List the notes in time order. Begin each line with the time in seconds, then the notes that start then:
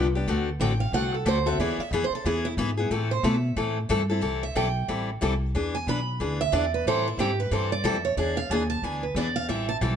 Already playing: C2
0.15 B3 D4 G4
0.27 D2 D3 A3 C4 F#4 A4
0.60 A1 D3 A3 C4 F#4 A4 G5
0.80 F5
0.92 C2 D3 A3 C4 F#4 A4 F#5
1.14 A4
1.25 D2 D3 A3 C4 F#4 A4 C5
1.46 C4 F#4 A4 E5
1.58 E2 E3 B3 E4 G#4 D5
1.78 E5, muted upright bass stroke
1.91 F2 E3 B3 E4 G#4 D5
2.04 C5
2.10 muted upright bass stroke
2.15 A4
2.25 E2 E3 B3 E4 G#4
2.45 E4
2.57 G#2 E3 B3 E4 G#4
2.77 B3 E4 G#4
2.90 A2 E3 A3 C4 E4 A4
3.11 C5
3.23 B2 E3 A3 C4 E4 A4 E5
3.56 A2 E3 A3 C4 E4 A4
3.89 G2 E3 A3 C4 E4 A4
4.10 C4 E4 A4
4.21 C2 E3 G3 C4 E4 A4
4.43 E5
4.55 B1 E3 G3 C4 E4 A4 G5
4.88 A1 E3 G3 C4 E4 A4
5.21 C2 E3 G3 C4 E4 A4
5.55 E2 E3 B3 D4 G#4
5.75 G#5
5.87 B1 E3 B3 D4 G#4 B5
6.20 D2 E3 B3 D4 G#4
6.41 E5
6.52 E2 E3 B3 D4 G#4 D5
6.74 B4
6.85 A2 E3 G3 C4 E4 A4 C5
7.08 E4
7.17 G#2 E3 G3 C4 E4 G4 A4
7.40 B4
7.51 G2 E3 G3 C4 E4 A4 C5
7.72 D5
7.84 F2 E3 G3 C4 E4 A4 E5
8.05 C#5
8.17 E2 E3 B3 D4 G#4 D5
8.37 F5
8.50 D#2 E3 B3 D4 G#4 G#5
8.70 A5
8.82 D2 E3 B3 D4 G#4 G#5
9.03 B4
9.14 E2 E3 B3 D4 G#4 D5
9.36 F5
9.48 A1 E3 G3 C4 E4 A4 E5
9.69 A5
9.81 B1 E3 G3 C4 E4 A4